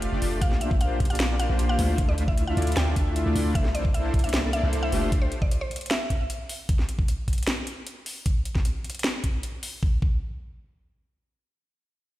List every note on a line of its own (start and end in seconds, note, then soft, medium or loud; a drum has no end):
0.00 0.10 F1 loud
0.00 0.10 D4 medium
0.00 0.10 F4 medium
0.00 0.34 E5 loud
0.00 closed hi-hat medium
0.12 0.20 F1 loud
0.12 0.20 A3 loud
0.12 0.20 D4 medium
0.12 0.20 F4 medium
0.12 0.20 G4 medium
0.12 0.20 D5 loud
0.22 0.43 F1 loud
0.22 0.39 A3 medium
0.22 0.39 D4 medium
0.22 0.39 F4 medium
0.22 0.39 G4 medium
0.22 0.39 D5 loud
0.22 open hi-hat loud
0.41 0.98 A#1 loud
0.41 0.98 A#3 loud
0.41 0.98 D4 loud
0.41 0.98 F4 medium
0.41 0.98 G4 medium
0.41 0.98 C5 loud
0.41 0.59 F5 loud
0.41 kick loud
0.41 closed hi-hat medium
0.51 snare soft
0.61 0.79 E5 medium
0.61 closed hi-hat medium
0.71 kick loud
0.81 1.07 F5 medium
0.81 closed hi-hat medium
1.00 1.48 A#1 loud
1.00 1.47 A#3 loud
1.00 1.47 D4 medium
1.00 1.47 F4 medium
1.00 1.47 G4 medium
1.00 1.47 D5 loud
1.00 kick medium
1.00 closed hi-hat medium
1.05 closed hi-hat medium
1.10 1.36 F5 loud
1.10 closed hi-hat medium
1.15 closed hi-hat medium
1.20 snare loud
1.20 closed hi-hat medium
1.40 1.66 F5 loud
1.40 closed hi-hat medium
1.49 1.77 A#1 loud
1.49 1.76 A#3 medium
1.49 1.76 D4 medium
1.49 1.76 F4 medium
1.49 1.76 G4 medium
1.49 1.76 C5 medium
1.59 closed hi-hat medium
1.69 2.04 F5 loud
1.79 2.06 D2 loud
1.79 2.06 A3 loud
1.79 2.06 D4 medium
1.79 2.06 E4 medium
1.79 2.06 F4 medium
1.79 2.06 C5 loud
1.79 open hi-hat medium
1.98 kick loud
1.98 closed hi-hat medium
2.08 2.55 D2 loud
2.08 2.55 A3 loud
2.08 2.55 D4 medium
2.08 2.55 E4 medium
2.08 2.55 F4 medium
2.08 2.26 D5 medium
2.08 2.55 E5 loud
2.18 closed hi-hat medium
2.28 2.45 E5 medium
2.28 kick loud
2.38 closed hi-hat medium
2.47 2.74 F5 loud
2.57 2.75 D2 loud
2.57 2.71 A3 medium
2.57 2.71 D4 medium
2.57 2.71 E4 medium
2.57 2.71 F4 medium
2.57 2.71 D5 loud
2.57 closed hi-hat soft
2.62 closed hi-hat medium
2.67 closed hi-hat medium
2.72 closed hi-hat medium
2.77 2.94 D2 loud
2.77 2.95 A3 medium
2.77 2.95 D4 medium
2.77 2.95 E4 medium
2.77 2.95 F4 medium
2.77 2.95 D5 loud
2.77 3.47 G5 loud
2.77 snare loud
2.77 closed hi-hat medium
2.96 3.24 D2 loud
2.96 3.24 A3 medium
2.96 3.24 D4 medium
2.96 3.24 E4 medium
2.96 3.24 F4 medium
2.96 3.24 E5 medium
2.96 kick medium
2.96 closed hi-hat medium
3.16 closed hi-hat medium
3.26 3.34 D2 loud
3.26 3.33 A3 loud
3.26 3.33 D4 medium
3.26 3.33 E4 medium
3.26 3.33 F4 medium
3.26 3.33 D5 loud
3.36 3.53 D2 loud
3.36 3.53 A3 medium
3.36 3.53 D4 medium
3.36 3.53 E4 medium
3.36 3.53 F4 medium
3.36 3.53 D5 loud
3.36 open hi-hat medium
3.55 4.12 C2 medium
3.55 4.12 A#3 loud
3.55 4.12 D4 loud
3.55 4.12 E4 loud
3.55 4.12 A4 loud
3.55 4.12 C5 loud
3.55 3.73 E5 loud
3.55 kick loud
3.55 closed hi-hat medium
3.65 snare soft
3.75 3.92 D5 medium
3.75 closed hi-hat medium
3.85 kick loud
3.94 4.21 E5 medium
3.94 closed hi-hat medium
4.14 4.61 C2 loud
4.14 4.61 A#3 loud
4.14 4.61 D4 medium
4.14 4.61 E4 medium
4.14 4.61 A4 medium
4.14 4.61 D5 loud
4.14 kick medium
4.14 closed hi-hat soft
4.19 closed hi-hat medium
4.24 4.50 E5 loud
4.24 closed hi-hat soft
4.29 closed hi-hat medium
4.34 snare loud
4.34 closed hi-hat medium
4.53 4.79 E5 medium
4.53 closed hi-hat medium
4.63 4.91 C2 loud
4.63 4.90 A#3 medium
4.63 4.90 D4 medium
4.63 4.90 E4 medium
4.63 4.90 A4 medium
4.63 4.90 C5 medium
4.73 closed hi-hat medium
4.83 5.18 E5 loud
4.92 5.18 F1 loud
4.92 5.20 A3 loud
4.92 5.20 D4 medium
4.92 5.20 F4 medium
4.92 5.20 G4 medium
4.92 5.20 C5 loud
4.92 open hi-hat medium
5.12 kick loud
5.12 closed hi-hat medium
5.22 5.39 C5 medium
5.32 closed hi-hat medium
5.42 5.59 D5 medium
5.42 kick loud
5.51 closed hi-hat medium
5.61 5.87 C5 loud
5.71 closed hi-hat soft
5.76 closed hi-hat medium
5.81 closed hi-hat medium
5.86 closed hi-hat medium
5.90 6.61 E5 medium
5.90 snare loud
5.90 closed hi-hat medium
6.10 kick medium
6.10 closed hi-hat medium
6.30 closed hi-hat medium
6.49 open hi-hat medium
6.69 kick loud
6.69 closed hi-hat medium
6.79 snare soft
6.89 closed hi-hat medium
6.99 kick loud
7.08 closed hi-hat medium
7.28 kick medium
7.28 closed hi-hat soft
7.33 closed hi-hat medium
7.38 closed hi-hat soft
7.43 closed hi-hat medium
7.47 snare loud
7.47 closed hi-hat medium
7.67 closed hi-hat medium
7.87 closed hi-hat medium
8.06 open hi-hat loud
8.26 kick loud
8.26 closed hi-hat medium
8.45 closed hi-hat medium
8.55 kick loud
8.55 snare soft
8.65 closed hi-hat medium
8.85 closed hi-hat medium
8.90 closed hi-hat medium
8.95 closed hi-hat medium
8.99 closed hi-hat medium
9.04 snare loud
9.04 closed hi-hat medium
9.24 kick medium
9.24 closed hi-hat medium
9.43 closed hi-hat medium
9.63 open hi-hat loud
9.83 kick loud
10.02 kick loud